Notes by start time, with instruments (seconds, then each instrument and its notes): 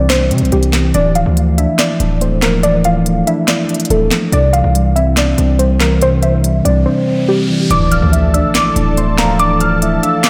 Already playing: 808-style bass C2, tine electric piano C3 E3 G3 C4 D4
0.10 tine electric piano D4, synth pluck C5, snare, clap, closed hi-hat
0.31 808-style bass C3, tine electric piano C4, closed hi-hat
0.38 808-style bass C2, closed hi-hat
0.45 closed hi-hat
0.52 808-style bass C2, tine electric piano G3, synth pluck G4, closed hi-hat
0.63 closed hi-hat
0.73 tine electric piano E3, snare, clap, closed hi-hat
0.94 808-style bass D1, tine electric piano E3, synth pluck D5, closed hi-hat
1.15 tine electric piano F3, synth pluck F5, closed hi-hat
1.26 808-style bass D2
1.36 tine electric piano A3, closed hi-hat
1.58 tine electric piano D4, synth pluck E5, closed hi-hat
1.79 tine electric piano E4, synth pluck D5, snare, clap, closed hi-hat
2.00 808-style bass D1, tine electric piano D4, closed hi-hat
2.21 tine electric piano A3, synth pluck C5, closed hi-hat
2.42 tine electric piano F3, synth pluck A#4, snare, clap, closed hi-hat
2.63 tine electric piano E3, synth pluck D5, closed hi-hat
2.84 tine electric piano F3, synth pluck F5, closed hi-hat
3.06 tine electric piano A3, closed hi-hat
3.27 tine electric piano D4, synth pluck E5, closed hi-hat
3.47 tine electric piano E4, synth pluck D5, snare, clap, closed hi-hat
3.69 tine electric piano D4, closed hi-hat
3.74 closed hi-hat
3.80 closed hi-hat
3.85 closed hi-hat
3.90 808-style bass D1, tine electric piano A3, synth pluck A4, closed hi-hat
4.11 tine electric piano F3, snare, clap, closed hi-hat
4.32 808-style bass C2, tine electric piano C3, synth pluck D5, closed hi-hat
4.53 tine electric piano E3, synth pluck F5, closed hi-hat
4.64 808-style bass C2
4.75 tine electric piano G3, closed hi-hat
4.96 tine electric piano C4, synth pluck E5, closed hi-hat
5.17 tine electric piano D4, synth pluck D5, snare, clap, closed hi-hat
5.38 808-style bass C2, tine electric piano C4, closed hi-hat
5.59 tine electric piano G3, synth pluck C5, closed hi-hat
5.80 tine electric piano E3, synth pluck A#4, snare, clap, closed hi-hat
6.01 tine electric piano C3, synth pluck C5, closed hi-hat, riser
6.23 tine electric piano E3, synth pluck E5, closed hi-hat
6.44 tine electric piano G3, closed hi-hat
6.65 808-style bass C2, tine electric piano C4, synth pluck D5, closed hi-hat
6.86 tine electric piano D4, synth pluck C5
7.07 tine electric piano C4
7.28 tine electric piano G3, synth pluck G4
7.50 tine electric piano E3
7.70 808-style bass D1, tine electric piano E3, analog synth pad D4 A4 D5 A5, soft synth lead D5, synth pluck D6, closed hi-hat, impact
7.92 tine electric piano F3, synth pluck F6, closed hi-hat
8.02 808-style bass D2
8.12 tine electric piano A3, soft synth lead E5, closed hi-hat
8.34 tine electric piano D4, soft synth lead D5, synth pluck E6, closed hi-hat
8.55 tine electric piano E4, synth pluck D6, snare, clap, closed hi-hat
8.76 808-style bass D1, tine electric piano D4, closed hi-hat
8.97 tine electric piano A3, synth pluck C6, closed hi-hat
9.18 tine electric piano F3, soft synth lead F5, synth pluck A#5, snare, clap, closed hi-hat
9.39 tine electric piano E3, soft synth lead D5, synth pluck D6, closed hi-hat
9.60 tine electric piano F3, synth pluck F6, closed hi-hat
9.82 tine electric piano A3, soft synth lead E5, closed hi-hat
10.03 tine electric piano D4, soft synth lead F5, synth pluck E6, closed hi-hat
10.23 tine electric piano E3, synth pluck D6, snare, clap, closed hi-hat